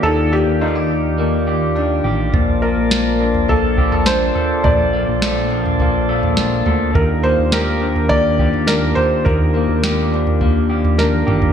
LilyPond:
<<
  \new Staff \with { instrumentName = "Felt piano" } { \time 4/4 \key ees \lydian \tempo 4 = 104 a'8 g'8 ees'2 r4 | r8 bes'4. a'4 c''4 | d''4. r2 r8 | bes'8 c''8 bes'4 d''4 bes'8 c''8 |
bes'4. r4. bes'4 | }
  \new Staff \with { instrumentName = "Tonewheel organ" } { \time 4/4 \key ees \lydian <ees f' g' d''>1 | <c'' d'' a''>1~ | <c'' d'' a''>1 | <ees d' g'>1~ |
<ees d' g'>1 | }
  \new Staff \with { instrumentName = "Tonewheel organ" } { \time 4/4 \key ees \lydian bes1~ | bes1~ | bes1~ | bes1~ |
bes1 | }
  \new Staff \with { instrumentName = "Clean electric guitar" } { \time 4/4 \key ees \lydian <ees bes d' g'>8 bes8 f'16 g'8. bes8 g'8 d'8 g'8 | bes,8 bes4 d'8 bes8 g'16 a'16 d'8 a'8 | bes,8 bes8 a'8 d'8 bes8 a'8 d'8 a'8 | ees8 bes8 g'8 d'8 bes8 g'8 d'8 g'8 |
ees8 bes8 g'8 d'8 bes8 g'8 d'8 g'8 | }
  \new Staff \with { instrumentName = "Analog synth bass" } { \clef bass \time 4/4 \key ees \lydian ees,8. ees,2~ ees,8. a,,8 | bes,,8. bes,,2~ bes,,8. r8 | bes,,8. bes,,2~ bes,,8. d,8 | ees,8. ees,2~ ees,8. r8 |
ees,8. ees,2~ ees,8. a,,8 | }
  \new DrumStaff \with { instrumentName = "Drums" } \drummode { \time 4/4 r4 r4 r4 r4 | <bd tomfh>4 sn8. tomfh16 <bd tomfh>8 bd16 tomfh16 sn8 tomfh8 | <bd tomfh>4 sn8. tomfh16 <bd tomfh>8. tomfh16 sn8 tomfh8 | <bd tomfh>4 sn8. tomfh16 <bd tomfh>8 bd16 tomfh16 sn8 tomfh8 |
<bd tomfh>4 sn8. tomfh16 <bd tomfh>8. tomfh16 sn16 tommh16 toml16 tomfh16 | }
>>